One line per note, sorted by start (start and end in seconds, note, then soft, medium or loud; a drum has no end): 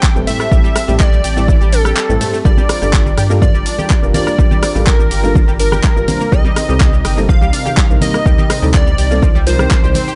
0.00 0.11 G3 medium
0.00 2.41 C4 medium
0.00 2.41 G4 medium
0.00 2.41 A4 medium
0.00 0.18 G5 loud
0.00 0.18 G6 loud
0.00 kick loud
0.00 clap loud
0.00 shaker soft
0.16 0.25 G1 medium
0.16 0.27 G2 medium
0.16 0.26 A2 loud
0.16 0.26 G3 medium
0.16 0.26 C4 loud
0.16 0.26 E4 medium
0.16 0.26 A4 loud
0.16 shaker soft
0.27 0.39 A2 medium
0.27 0.39 G3 medium
0.27 0.32 A3 medium
0.27 0.39 C4 medium
0.27 0.39 E4 medium
0.27 0.39 C5 medium
0.27 1.01 E5 loud
0.27 1.01 E6 loud
0.27 open hi-hat medium
0.27 ride medium
0.27 shaker medium
0.40 0.47 A3 medium
0.40 cross-stick medium
0.40 shaker soft
0.51 0.62 A#1 medium
0.51 0.63 A2 medium
0.51 0.63 G3 loud
0.51 0.63 G3 medium
0.51 0.63 C4 medium
0.51 0.63 E4 medium
0.51 0.63 A4 medium
0.51 kick loud
0.51 shaker soft
0.64 0.75 G3 loud
0.64 shaker soft
0.76 0.88 C4 medium
0.76 cross-stick medium
0.76 open hi-hat loud
0.76 ride medium
0.76 shaker medium
0.88 1.21 A#1 loud
0.88 1.06 A2 medium
0.88 0.99 G3 medium
0.88 1.06 G3 medium
0.88 1.06 C4 medium
0.88 1.06 E4 medium
0.88 1.06 G4 medium
0.88 shaker soft
1.00 1.11 G3 medium
1.00 1.74 D5 loud
1.00 1.74 D6 loud
1.00 kick loud
1.00 clap loud
1.00 shaker soft
1.12 1.17 G3 medium
1.12 shaker soft
1.24 1.57 A1 medium
1.24 1.32 G4 medium
1.24 open hi-hat medium
1.24 ride medium
1.24 shaker medium
1.37 1.47 A2 medium
1.37 1.47 G3 medium
1.37 1.44 A3 medium
1.37 1.47 C4 medium
1.37 1.47 E4 medium
1.37 1.47 G4 loud
1.37 shaker soft
1.48 1.60 E3 loud
1.48 kick loud
1.48 shaker soft
1.61 1.93 A1 medium
1.61 1.72 G3 loud
1.61 shaker soft
1.73 1.77 D4 medium
1.73 2.36 A4 loud
1.73 2.36 A5 loud
1.73 open hi-hat loud
1.73 ride medium
1.73 shaker medium
1.85 1.93 G4 medium
1.85 cross-stick medium
1.85 shaker soft
1.97 2.05 G3 medium
1.97 clap loud
1.97 shaker soft
2.09 2.19 A1 medium
2.09 2.20 G2 medium
2.09 2.19 A2 loud
2.09 2.19 G3 medium
2.09 2.19 C4 medium
2.09 2.19 E4 medium
2.09 2.19 A4 loud
2.09 shaker soft
2.21 2.32 G2 medium
2.21 2.32 G3 medium
2.21 2.26 A3 medium
2.21 2.32 C4 medium
2.21 2.32 E4 medium
2.21 2.32 C5 medium
2.21 open hi-hat medium
2.21 ride medium
2.21 shaker medium
2.33 2.41 A3 medium
2.33 shaker soft
2.45 2.55 G1 loud
2.45 2.57 G2 medium
2.45 2.56 G3 loud
2.45 2.57 G3 medium
2.45 6.28 G3 medium
2.45 2.57 D4 medium
2.45 6.28 D4 medium
2.45 6.28 F4 medium
2.45 2.57 F4 medium
2.45 2.57 A#4 medium
2.45 10.15 A#4 medium
2.45 3.33 D5 loud
2.45 3.33 D6 loud
2.45 kick loud
2.45 cowbell medium
2.45 shaker soft
2.57 2.69 G3 loud
2.57 high conga medium
2.57 shaker soft
2.69 2.81 C4 medium
2.69 cross-stick medium
2.69 open hi-hat loud
2.69 ride medium
2.69 cowbell medium
2.69 shaker medium
2.82 3.14 G1 medium
2.82 3.00 G2 medium
2.82 2.92 G3 medium
2.82 3.00 G3 medium
2.82 2.99 D4 medium
2.82 2.99 F4 medium
2.82 3.00 A4 medium
2.82 shaker soft
2.93 3.05 G3 medium
2.93 kick loud
2.93 clap loud
2.93 shaker soft
3.06 3.11 G3 medium
3.06 high conga medium
3.06 shaker soft
3.18 3.51 G2 medium
3.18 3.26 G4 medium
3.18 cross-stick medium
3.18 open hi-hat loud
3.18 ride medium
3.18 shaker medium
3.30 3.41 G2 medium
3.30 3.41 G3 medium
3.30 3.38 A#3 medium
3.30 3.41 D4 medium
3.30 3.41 F4 medium
3.30 3.41 A4 loud
3.30 shaker soft
3.42 3.54 F3 loud
3.42 4.05 D5 loud
3.42 4.05 D6 loud
3.42 kick loud
3.42 high conga loud
3.42 shaker soft
3.54 3.64 G1 loud
3.54 3.65 G3 loud
3.54 shaker soft
3.66 3.71 D4 medium
3.66 open hi-hat loud
3.66 ride medium
3.66 shaker medium
3.78 3.86 G4 medium
3.78 cowbell medium
3.78 high conga medium
3.78 shaker soft
3.90 3.98 G3 medium
3.90 kick loud
3.90 clap loud
3.90 shaker medium
4.03 4.12 F1 medium
4.03 4.14 G2 medium
4.03 4.13 G2 loud
4.03 4.13 G3 medium
4.03 4.13 D4 medium
4.03 4.13 F4 medium
4.03 4.13 A#4 loud
4.03 shaker soft
4.14 4.26 G2 medium
4.14 4.26 G3 medium
4.14 4.19 A#3 medium
4.14 4.26 D4 medium
4.14 4.26 F4 medium
4.14 4.26 C5 medium
4.14 4.78 D5 loud
4.14 4.78 D6 loud
4.14 open hi-hat medium
4.14 ride medium
4.14 high conga loud
4.14 shaker medium
4.27 4.34 A#3 medium
4.27 cross-stick medium
4.27 shaker soft
4.38 4.49 A1 medium
4.38 4.50 G2 medium
4.38 4.50 G3 loud
4.38 4.50 G3 medium
4.38 4.50 D4 medium
4.38 4.50 F4 medium
4.38 4.50 A#4 medium
4.38 kick loud
4.38 shaker soft
4.51 4.62 G3 loud
4.51 high conga medium
4.51 shaker soft
4.63 4.75 C4 medium
4.63 cross-stick medium
4.63 open hi-hat loud
4.63 ride medium
4.63 cowbell medium
4.63 shaker medium
4.75 5.08 A1 loud
4.75 4.93 G2 medium
4.75 4.86 G3 medium
4.75 4.93 G3 medium
4.75 4.93 D4 medium
4.75 4.93 F4 medium
4.75 4.93 A4 medium
4.75 shaker soft
4.87 4.98 G3 medium
4.87 5.50 A#4 loud
4.87 5.50 A#5 loud
4.87 kick loud
4.87 clap loud
4.87 shaker soft
4.99 5.04 G3 medium
4.99 high conga medium
4.99 shaker soft
5.11 5.44 G1 medium
5.11 5.19 G4 medium
5.11 open hi-hat loud
5.11 ride medium
5.11 shaker medium
5.24 5.34 G2 loud
5.24 5.34 G3 medium
5.24 5.31 A#3 medium
5.24 5.34 D4 medium
5.24 5.34 F4 medium
5.24 5.34 A4 loud
5.24 shaker soft
5.35 5.47 F3 loud
5.35 kick loud
5.35 high conga loud
5.35 shaker soft
5.48 5.80 G1 medium
5.48 5.59 G3 loud
5.48 shaker soft
5.59 5.64 D4 medium
5.59 6.34 A#4 loud
5.59 6.34 A#5 loud
5.59 open hi-hat loud
5.59 ride medium
5.59 shaker medium
5.72 5.80 G4 medium
5.72 cross-stick medium
5.72 high conga medium
5.72 shaker soft
5.84 5.92 G3 medium
5.84 kick loud
5.84 clap loud
5.84 shaker soft
5.96 6.06 G1 medium
5.96 6.07 G2 medium
5.96 6.06 G2 loud
5.96 6.06 G3 medium
5.96 6.06 D4 medium
5.96 6.06 F4 medium
5.96 6.06 A#4 loud
5.96 shaker soft
6.08 6.20 C3 medium
6.08 6.20 G3 medium
6.08 6.13 A#3 medium
6.08 6.20 D4 medium
6.08 6.20 F4 medium
6.08 6.20 C5 medium
6.08 open hi-hat loud
6.08 ride medium
6.08 high conga loud
6.08 shaker medium
6.20 6.28 A#3 medium
6.20 shaker soft
6.32 6.42 C2 loud
6.32 6.44 C3 medium
6.32 10.15 C3 medium
6.32 6.44 G3 loud
6.32 6.44 G3 medium
6.32 6.44 C4 medium
6.32 10.15 C4 medium
6.32 6.44 D#4 medium
6.32 10.15 D#4 medium
6.32 6.44 A#4 medium
6.32 7.20 D#5 loud
6.32 7.20 D#6 loud
6.32 kick loud
6.32 cowbell medium
6.32 shaker soft
6.45 6.56 G3 loud
6.45 high conga medium
6.45 shaker soft
6.56 6.68 C4 medium
6.56 cross-stick medium
6.56 open hi-hat loud
6.56 ride medium
6.56 cowbell medium
6.56 shaker medium
6.69 7.01 C2 medium
6.69 6.87 C3 medium
6.69 6.79 G3 medium
6.69 6.87 G3 medium
6.69 6.87 C4 medium
6.69 6.87 D#4 medium
6.69 6.87 A4 medium
6.69 shaker soft
6.80 6.92 G3 medium
6.80 kick loud
6.80 clap loud
6.80 shaker soft
6.93 6.98 G3 medium
6.93 high conga medium
6.93 shaker soft
7.05 7.38 G1 medium
7.05 7.13 G4 medium
7.05 cross-stick medium
7.05 open hi-hat loud
7.05 ride medium
7.05 shaker medium
7.17 7.28 C3 medium
7.17 7.28 G3 medium
7.17 7.25 A#3 medium
7.17 7.28 C4 medium
7.17 7.28 D#4 medium
7.17 7.28 A4 loud
7.17 shaker soft
7.29 7.41 F3 loud
7.29 7.92 F5 loud
7.29 7.92 F6 loud
7.29 kick loud
7.29 high conga medium
7.29 shaker soft
7.41 7.51 C2 loud
7.41 7.52 G3 loud
7.41 shaker soft
7.53 7.58 D4 medium
7.53 open hi-hat loud
7.53 ride medium
7.53 shaker medium
7.65 7.73 G4 medium
7.65 cowbell medium
7.65 high conga medium
7.65 shaker soft
7.77 7.85 G3 medium
7.77 kick loud
7.77 clap loud
7.77 shaker soft
7.90 7.99 A#1 medium
7.90 8.01 G2 medium
7.90 8.00 C3 loud
7.90 8.00 G3 medium
7.90 8.00 C4 medium
7.90 8.00 D#4 medium
7.90 8.00 A#4 loud
7.90 shaker soft
8.01 8.13 C3 medium
8.01 8.13 G3 medium
8.01 8.06 A#3 medium
8.01 8.13 C4 medium
8.01 8.13 D#4 medium
8.01 8.13 C5 medium
8.01 8.65 D#5 loud
8.01 8.65 D#6 loud
8.01 open hi-hat loud
8.01 ride medium
8.01 high conga medium
8.01 shaker medium
8.14 8.22 A#3 medium
8.14 cross-stick medium
8.14 shaker soft
8.26 8.36 D2 medium
8.26 8.37 C3 medium
8.26 8.37 G3 loud
8.26 8.37 G3 medium
8.26 8.37 C4 medium
8.26 8.37 D#4 medium
8.26 8.37 A#4 medium
8.26 kick loud
8.26 shaker soft
8.38 8.49 G3 loud
8.38 high conga medium
8.38 shaker soft
8.50 8.62 C4 medium
8.50 cross-stick medium
8.50 open hi-hat loud
8.50 ride medium
8.50 cowbell medium
8.50 shaker medium
8.62 8.95 D2 medium
8.62 8.80 C3 medium
8.62 8.73 G3 medium
8.62 8.80 G3 medium
8.62 8.80 C4 medium
8.62 8.80 D#4 medium
8.62 8.80 A4 medium
8.62 shaker soft
8.74 8.85 G3 medium
8.74 9.37 D5 loud
8.74 9.37 D6 loud
8.74 kick loud
8.74 clap loud
8.74 shaker soft
8.86 8.91 G3 medium
8.86 high conga medium
8.86 shaker soft
8.98 9.31 C2 medium
8.98 9.06 G4 medium
8.98 open hi-hat medium
8.98 ride medium
8.98 shaker medium
9.11 9.22 C3 medium
9.11 9.22 G3 medium
9.11 9.18 A#3 medium
9.11 9.22 C4 medium
9.11 9.22 D#4 medium
9.11 9.22 A4 loud
9.11 shaker soft
9.22 9.34 F3 loud
9.22 kick loud
9.22 high conga loud
9.22 shaker soft
9.35 9.67 C2 medium
9.35 9.46 G3 loud
9.35 shaker soft
9.47 9.57 C3 medium
9.47 9.55 F3 loud
9.47 9.57 G3 medium
9.47 9.57 C4 medium
9.47 9.57 D#4 medium
9.47 9.57 A#4 loud
9.47 10.15 C5 loud
9.47 10.15 C6 loud
9.47 open hi-hat loud
9.47 ride medium
9.47 shaker medium
9.59 9.77 C3 medium
9.59 9.67 G3 medium
9.59 9.77 G3 medium
9.59 9.77 C4 medium
9.59 9.77 D#4 medium
9.59 9.77 A#4 medium
9.59 cross-stick medium
9.59 high conga medium
9.59 shaker soft
9.71 9.79 F3 medium
9.71 kick loud
9.71 clap loud
9.71 shaker soft
9.83 9.93 C2 medium
9.83 9.94 C3 medium
9.83 9.94 G3 medium
9.83 9.94 C4 medium
9.83 9.94 D#4 medium
9.83 9.88 G4 medium
9.83 9.94 D5 medium
9.83 shaker soft
9.94 10.03 C4 medium
9.94 open hi-hat loud
9.94 ride medium
9.94 high conga loud
9.94 shaker medium
10.08 10.12 G4 medium
10.08 shaker soft